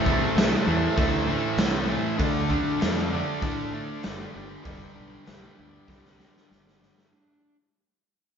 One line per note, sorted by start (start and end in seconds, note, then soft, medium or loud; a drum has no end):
0.00 2.15 A4 medium
0.00 2.16 C5 medium
0.00 2.17 E5 medium
0.05 0.25 C2 medium
0.05 0.35 A2 medium
0.05 0.35 E3 medium
0.05 0.38 A3 medium
0.05 kick medium
0.35 0.55 C2 medium
0.35 0.65 A2 loud
0.35 0.66 E3 loud
0.35 0.67 A3 loud
0.35 snare loud
0.35 open hi-hat medium
0.66 0.86 E2 medium
0.66 0.95 A2 medium
0.66 0.96 E3 medium
0.66 0.97 A3 medium
0.96 1.36 D2 medium
0.96 1.26 A2 medium
0.96 1.27 E3 loud
0.96 1.28 A3 medium
0.96 kick loud
0.96 open hi-hat soft
1.28 1.57 A2 medium
1.28 1.58 E3 loud
1.28 1.59 A3 medium
1.57 1.96 C2 medium
1.57 1.87 A2 medium
1.57 1.89 E3 medium
1.57 1.89 A3 medium
1.57 snare loud
1.57 open hi-hat medium
1.88 2.17 A2 medium
1.88 2.18 E3 medium
1.88 2.17 A3 medium
2.18 2.58 D2 loud
2.18 2.48 D3 medium
2.18 2.49 A3 medium
2.18 2.50 D4 loud
2.18 4.30 A4 medium
2.18 4.30 D5 medium
2.18 kick loud
2.18 open hi-hat medium
2.22 4.31 F5 medium
2.49 2.79 D3 medium
2.49 2.80 A3 medium
2.49 2.81 D4 medium
2.49 kick medium
2.80 3.21 F2 medium
2.80 3.11 D3 loud
2.80 3.12 A3 loud
2.80 3.13 D4 loud
2.80 snare loud
2.80 open hi-hat medium
3.12 3.41 D3 medium
3.12 3.41 A3 medium
3.12 3.44 D4 medium
3.42 3.81 A2 medium
3.42 3.72 D3 medium
3.42 3.73 A3 medium
3.42 3.74 D4 medium
3.42 kick loud
3.42 open hi-hat medium
3.73 4.03 D3 medium
3.73 4.04 A3 medium
3.73 4.06 D4 loud
4.03 4.24 F#1 medium
4.03 4.33 D3 medium
4.03 4.33 A3 medium
4.03 7.56 D4 medium
4.03 snare loud
4.03 open hi-hat medium
4.34 4.55 G1 medium
4.34 4.62 G2 medium
4.34 4.63 D3 medium
4.34 4.64 G3 medium
4.34 7.06 B4 medium
4.34 7.07 D5 medium
4.34 7.08 G5 medium
4.63 4.85 F1 medium
4.63 4.92 G2 medium
4.63 4.93 D3 loud
4.63 4.94 G3 loud
4.63 kick loud
4.63 open hi-hat medium
4.93 5.24 G2 medium
4.93 5.25 D3 medium
4.93 5.25 G3 medium
4.99 5.17 B1 medium
5.25 5.47 B1 medium
5.25 5.55 G2 medium
5.25 5.56 D3 loud
5.25 5.56 G3 loud
5.25 snare loud
5.25 open hi-hat soft
5.56 5.78 D2 medium
5.56 5.86 G2 medium
5.56 5.88 D3 medium
5.56 5.88 G3 medium
5.87 6.27 C2 medium
5.87 6.17 G2 medium
5.87 6.18 D3 medium
5.87 6.19 G3 medium
5.87 kick medium
5.87 snare medium
6.05 snare medium
6.18 6.46 G2 medium
6.18 6.47 D3 medium
6.18 6.48 G3 loud
6.18 snare medium
6.37 snare medium
6.47 6.78 G2 medium
6.47 6.78 D3 medium
6.47 6.79 G3 medium
6.51 6.89 G1 medium
6.51 snare medium
6.67 snare medium
6.79 7.08 G2 medium
6.79 7.09 D3 medium
6.79 7.09 G3 medium
6.79 snare medium
6.98 snare medium